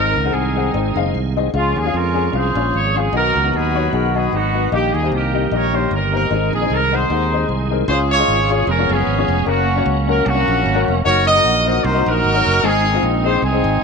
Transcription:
Already playing: fingered electric bass G#1, upright piano G#2 C4 D#4 G#4 D#5, tonewheel organ D#3 G#3 C4 G#4, horn section D#4 A#4
0.16 fingered electric bass C#2
0.24 upright piano C4 D#4 G#4 F#5
0.34 fingered electric bass C2, horn section C4 D#4 G#4
0.56 upright piano C4 D#4 G#4 F#5
0.74 fingered electric bass G#1, upright piano C4 D#4 G#4 D#5
0.95 fingered electric bass F#1, upright piano C4 D#4 G#4 F5, tonewheel organ D#5
1.14 fingered electric bass C2, tonewheel organ F5
1.36 upright piano C4 D#4 G#4 D#5, tonewheel organ F#5
1.53 fingered electric bass C#2, upright piano C#3 C#4 F4 G#4 F5, tonewheel organ F3 G#3 C#4 G#4, horn section G#3 C#4 F4
1.76 fingered electric bass D#2, horn section G#4
1.84 upright piano C#4 F4 G#4 F5
1.94 fingered electric bass F2, horn section C#4 F4 A#4
2.14 upright piano C#4 F4 G#4 G#5
2.32 fingered electric bass C2, upright piano C#4 F4 G#4 F5, horn section F4 G#4 C5
2.55 fingered electric bass A#1, upright piano C#4 F4 G#4 C#5
2.74 fingered electric bass G#1, horn section C#5
2.95 upright piano C#4 F4 G#4 F5, horn section G#4
3.12 fingered electric bass B1, upright piano B2 B3 D#4 F#4 D#5, tonewheel organ D#3 F#3 B3 F4, horn section D#4 F#4 A#4
3.18 tonewheel organ F#4
3.35 fingered electric bass C#2
3.43 upright piano B3 D#4 F#4 B4
3.54 fingered electric bass D#2, horn section B3 D#4 G#4
3.74 upright piano B3 D#4 F#4 C#5
3.92 fingered electric bass B1, upright piano B3 D#4 F#4 G#4, horn section D#4 F#4 A#4
4.14 upright piano B3 D#4 F#4 D#5, horn section G#4
4.33 fingered electric bass G#1, horn section B3 D#4 F#4
4.54 upright piano B3 D#4 F#4 B4
4.72 fingered electric bass A#1, upright piano A#2 A#3 D#4 G4 D#5, tonewheel organ D#3 G3 A#3 G4, horn section A#3 D#4 G4
4.94 fingered electric bass D#2, horn section G#4
5.02 upright piano A#3 D#4 G4 C5
5.12 fingered electric bass C2, horn section D#4 G4 A#4
5.33 upright piano A#3 D#4 G4 D#5
5.51 fingered electric bass A#1, upright piano A#3 D#4 G4 D#5, horn section G4 A#4 C#5
5.73 upright piano A#3 D#4 G4 C#5, horn section C5
5.91 fingered electric bass G1, horn section A#4
6.12 upright piano A#3 D#4 G4 C5, horn section D#4 A#4
6.30 fingered electric bass G#1, upright piano G#2 C4 D#4 G#4 D#5, tonewheel organ D#3 G#3 C4 F#4
6.36 tonewheel organ G#4
6.53 fingered electric bass A#1, horn section G#4
6.61 upright piano C4 D#4 G#4 D#5
6.70 fingered electric bass C2, horn section A#4
6.92 upright piano C4 D#4 G#4 F#5, horn section C5
6.96 horn section D#4 G#4
7.10 fingered electric bass D#2, upright piano C4 D#4 G#4 F#5
7.32 upright piano C4 D#4 G#4 D#5
7.49 fingered electric bass C2
7.70 upright piano C4 D#4 G#4 A#4
7.88 fingered electric bass C#2, upright piano C#3 F4 G#4 C#5, tonewheel organ G#3 C#4 E4, horn section F4 G#4 C5
7.93 tonewheel organ F4
8.11 horn section F4 G#4 C#5
8.19 upright piano F4 G#4 D#5
8.28 fingered electric bass G#1
8.49 upright piano F4 G#4 C#5, horn section C#5
8.67 fingered electric bass F1, tonewheel organ F3 G#3 B3 C#4 G#4, horn section C#4 A#4
8.78 upright piano B3 C#4 F4 G#4 C#5
8.89 fingered electric bass F#1, horn section B3 C#4 G#4
9.07 fingered electric bass G#1
9.17 upright piano B3 C#4 F4 G#4 C#5
9.28 fingered electric bass F1
9.45 fingered electric bass F#1, tonewheel organ F#3 A#3 C#4, horn section A#3 C#4 F#4, upright piano C#4 F#4 A#4
9.76 upright piano C#4 F#4 C#5
9.86 fingered electric bass C#2
10.07 upright piano C#4 F#4 A#4, horn section A#4
10.26 fingered electric bass C2, horn section A#3 C#4 F#4
10.35 upright piano C#4 F#4 A#4
10.48 fingered electric bass A#1
10.66 fingered electric bass G#1
10.75 upright piano C#4 F#4 A#4
10.88 fingered electric bass F1
11.04 fingered electric bass F#1, tonewheel organ F3 A#3 D#4, upright piano D#4 F#4 A#4, horn section F#4 A#4 C#5
11.10 tonewheel organ F#3
11.26 horn section F#4 A#4 D#5
11.35 upright piano D#4 F#4 A#4
11.44 fingered electric bass A#1
11.65 upright piano D#4 F#4 C5, horn section D#5
11.84 fingered electric bass C2, horn section D#4 F#4 C5
11.94 upright piano D#4 F#4 C5
12.06 fingered electric bass A#1, horn section D#4 F#4 A#4
12.24 fingered electric bass G#1
12.34 upright piano D#4 F#4 C#5
12.46 fingered electric bass F#1
12.63 fingered electric bass G#1, upright piano G#2 C4 D#4 G#4, tonewheel organ G#3 C4 D#4, horn section C4 D#4 G#4
12.93 upright piano C4 D#4 F4
13.03 fingered electric bass A#1
13.24 upright piano C4 D#4 G#4, horn section C5
13.42 fingered electric bass C2, horn section C4 D#4 G#4
13.53 upright piano C4 D#4 G#4
13.64 fingered electric bass G#1

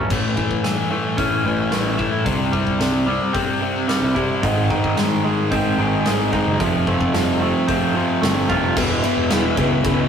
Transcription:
0.10 picked electric bass A1, distorted electric guitar A2 E3 A3, kick, crash
0.37 distorted electric guitar A2 E3 A3, kick
0.51 kick
0.64 distorted electric guitar A2 E3 A3, snare, open hi-hat
0.91 distorted electric guitar A2 E3 A3
1.17 distorted electric guitar A2 E3 A3, clean electric guitar C#4, kick, open hi-hat
1.44 picked electric bass A1, distorted electric guitar A2 E3 A3
1.71 picked electric bass A1, distorted electric guitar A2 E3 A3, snare, open hi-hat
1.98 distorted electric guitar A2 E3 A3, clean electric guitar E4, kick
2.11 picked electric bass A2
2.26 picked electric bass C2, distorted electric guitar C3 G3 C4, kick, open hi-hat
2.53 distorted electric guitar C3 G3 C4, kick
2.67 kick
2.80 distorted electric guitar C3 G3 C4, snare, open hi-hat
3.08 distorted electric guitar C3 G3 C4
3.34 distorted electric guitar C3 G3 C4, kick, open hi-hat
3.62 distorted electric guitar C3 G3 C4
3.88 distorted electric guitar C3 G3 C4, snare, open hi-hat
4.02 picked electric bass C2
4.15 distorted electric guitar C3 G3 C4, picked electric bass C3, clean electric guitar E4, kick
4.43 picked electric bass G#1, distorted electric guitar G#2 D#3 G#3, kick, open hi-hat
4.70 distorted electric guitar G#2 D#3 G#3, kick
4.84 kick
4.97 distorted electric guitar G#2 D#3 G#3, snare, open hi-hat
5.25 distorted electric guitar G#2 D#3 G#3
5.51 distorted electric guitar G#2 D#3 G#3, clean electric guitar C4, kick, open hi-hat
5.78 picked electric bass G#1, distorted electric guitar G#2 D#3 G#3
6.06 picked electric bass G#1, distorted electric guitar G#2 D#3 G#3, snare, open hi-hat
6.33 distorted electric guitar G#2 D#3 G#3, clean electric guitar D#4, kick
6.46 picked electric bass F#1
6.60 picked electric bass F1, distorted electric guitar F2 C3 F3, kick, open hi-hat
6.87 distorted electric guitar F2 C3 F3, clean electric guitar A3, kick
7.01 kick
7.14 distorted electric guitar F2 C3 F3, snare, open hi-hat
7.40 distorted electric guitar F2 C3 F3, clean electric guitar A3
7.68 distorted electric guitar F2 C3 F3, clean electric guitar C4, kick, open hi-hat
7.95 distorted electric guitar F2 C3 F3
8.21 picked electric bass G1, distorted electric guitar F2 C3 F3, clean electric guitar A3, snare, open hi-hat
8.49 picked electric bass F1, distorted electric guitar F2 C3 F3, clean electric guitar F4, kick
8.76 picked electric bass E1, distorted electric guitar E2 B2 E3, string section E3 E4 G#4 B4 B5, kick, crash
9.03 distorted electric guitar E2 B2 E3, ride
9.17 picked electric bass E1
9.30 distorted electric guitar E2 B2 E3, snare, ride
9.57 picked electric bass C#2, distorted electric guitar E2 B2 E3, kick, ride
9.84 picked electric bass C#2, distorted electric guitar E2 B2 E3, kick, ride

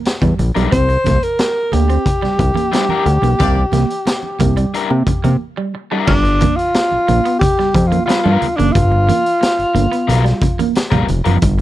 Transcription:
0.05 snare, closed hi-hat, muted conga
0.22 analog synth bass E2, clean electric guitar G3, kick, closed hi-hat, high conga
0.39 analog synth bass A#1, muted clean electric guitar stroke, closed hi-hat, low conga
0.55 analog synth bass B1, overdriven electric guitar G3 D4 E4 A#4, clean electric guitar G3, closed hi-hat, high conga
0.71 analog synth bass C2, clean electric guitar C4, alto saxophone C5, kick, closed hi-hat, muted conga
0.89 muted clean electric guitar stroke, closed hi-hat, muted conga
1.04 analog synth bass C2, clean electric guitar A#3, kick, snare, closed hi-hat, high conga
1.23 alto saxophone A#4, closed hi-hat
1.39 muted clean electric guitar stroke, snare, closed hi-hat
1.72 analog synth bass D2, clean electric guitar A#3, alto saxophone G4, closed hi-hat, low conga
1.89 clean electric guitar C4, closed hi-hat
2.06 kick, closed hi-hat
2.22 analog synth bass C2, clean electric guitar G3, snare, muted conga
2.39 analog synth bass C2, muted clean electric guitar stroke, kick, closed hi-hat, high conga
2.55 clean electric guitar A#3, closed hi-hat, high conga
2.72 overdriven electric guitar G3 D4 E4 C5, clean electric guitar G3, snare, closed hi-hat, muted conga
2.89 overdriven electric guitar G3 D4 E4 A#4, high conga
3.06 analog synth bass D2, muted clean electric guitar stroke, closed hi-hat, low conga
3.22 analog synth bass B1, clean electric guitar A#3, closed hi-hat, high conga
3.39 analog synth bass C2, horn section A#3 G4 D5, clean electric guitar C4, kick, closed hi-hat
3.55 muted clean electric guitar stroke, high conga
3.72 analog synth bass C2, clean electric guitar A#3, snare, closed hi-hat, high conga
3.90 closed hi-hat
4.06 muted clean electric guitar stroke, snare, closed hi-hat, muted conga
4.23 muted conga
4.39 analog synth bass C2, clean electric guitar A#3, kick, closed hi-hat, low conga
4.57 clean electric guitar G3, closed hi-hat
4.74 overdriven electric guitar G3 D4 E4 A#4, closed hi-hat
4.90 analog synth bass C3, clean electric guitar A#3, muted conga
5.07 muted clean electric guitar stroke, kick, closed hi-hat, high conga
5.24 analog synth bass C3, clean electric guitar A#3, closed hi-hat, high conga
5.57 clean electric guitar G3
5.75 muted clean electric guitar stroke
5.91 clean electric guitar G3, overdriven electric guitar G3 D4 E4 A#4
6.07 analog synth bass G1, clean electric guitar G3, alto saxophone D4, kick, crash
6.24 muted clean electric guitar stroke, closed hi-hat
6.40 clean electric guitar A#3, kick, closed hi-hat, high conga
6.56 alto saxophone F4, closed hi-hat
6.74 muted clean electric guitar stroke, snare, closed hi-hat, muted conga
6.92 analog synth bass A#1, muted conga
7.08 analog synth bass A#1, clean electric guitar A#3, closed hi-hat, low conga
7.25 clean electric guitar B3, closed hi-hat
7.39 alto saxophone G4, kick, closed hi-hat, low conga
7.59 clean electric guitar G3, snare
7.75 analog synth bass F2, muted clean electric guitar stroke, kick, closed hi-hat, high conga
7.87 alto saxophone F4
7.92 clean electric guitar A#3, closed hi-hat, high conga
8.06 overdriven electric guitar G3 B3 F4 B4, clean electric guitar G3, alto saxophone F4, closed hi-hat
8.10 snare
8.24 analog synth bass G2, overdriven electric guitar G3 B3 F4 A#4, muted conga, high conga
8.42 muted clean electric guitar stroke, closed hi-hat, low conga
8.56 analog synth bass F#1, clean electric guitar A#3, alto saxophone D4, closed hi-hat, high conga
8.72 analog synth bass G1, clean electric guitar G3, alto saxophone F4, kick, closed hi-hat, muted conga
8.92 muted clean electric guitar stroke, muted conga
9.09 clean electric guitar A#3, closed hi-hat, high conga
9.26 closed hi-hat
9.41 muted clean electric guitar stroke, snare, closed hi-hat
9.59 analog synth bass G1, closed hi-hat
9.75 analog synth bass G1, clean electric guitar A#3, closed hi-hat, low conga
9.92 clean electric guitar B3, closed hi-hat
10.08 analog synth bass B1, overdriven electric guitar G3 B3 F4 A#4, closed hi-hat, muted conga, low conga
10.24 clean electric guitar G3, snare, closed hi-hat
10.42 muted clean electric guitar stroke, kick, closed hi-hat, high conga
10.59 clean electric guitar A#3, closed hi-hat, high conga
10.75 snare, closed hi-hat
10.91 analog synth bass A#1, overdriven electric guitar G3 B3 F4 A#4, clean electric guitar G3, kick, closed hi-hat, high conga
11.08 analog synth bass F1, muted clean electric guitar stroke, closed hi-hat, low conga
11.24 analog synth bass F#1, clean electric guitar F3, overdriven electric guitar G3 B3 F4 A#4, closed hi-hat, high conga
11.42 analog synth bass G1, clean electric guitar G3, kick, closed hi-hat, muted conga

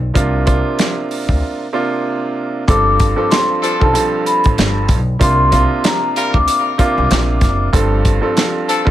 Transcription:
Already playing: upright bass B1
0.14 upright bass C2, upright piano C3 A#3 D4 F4, kick, closed hi-hat
0.46 upright piano C3 A#3 D4 F4, kick, closed hi-hat
0.79 snare, closed hi-hat
1.11 open hi-hat
1.29 upright bass D2, kick
1.73 upright piano C3 A#3 D4 F4
2.68 upright bass G1, upright piano G2 F3 C4 A4, vibraphone D6, kick, closed hi-hat
3.00 kick, closed hi-hat
3.16 upright piano G2 F3 C4 A4
3.31 vibraphone C6, snare, closed hi-hat
3.62 horn section F3 D4 A4, closed hi-hat
3.80 upright bass B1, upright piano G2 F3 C4 A4, vibraphone A5, kick
3.94 upright piano G2 F3 C4 A4, closed hi-hat
4.26 vibraphone B5, closed hi-hat
4.44 upright bass A1, kick, closed hi-hat
4.58 upright bass G1, snare, closed hi-hat
4.89 upright bass B1, kick, closed hi-hat
5.19 upright bass C2, upright piano C3 A#3 D4 F4, vibraphone C6, kick, closed hi-hat
5.51 upright piano C3 A#3 D4 F4, kick, closed hi-hat
5.84 vibraphone A#5, snare, closed hi-hat
6.16 horn section G3 F4 A#4, closed hi-hat
6.34 upright bass D2, vibraphone D6, kick
6.48 closed hi-hat
6.78 upright piano C3 A#3 D4 F4, kick, closed hi-hat
6.98 upright bass C2
7.11 upright bass A#1, snare, closed hi-hat
7.41 upright bass F#1, kick, snare, closed hi-hat
7.73 upright bass G1, upright piano G2 F3 C4 A4, kick, closed hi-hat
8.05 kick, closed hi-hat
8.22 upright piano G2 F3 C4 A4
8.37 snare, closed hi-hat
8.68 horn section F3 D4 A4, closed hi-hat
8.85 upright bass B1, upright piano G2 F3 C4 A4, kick

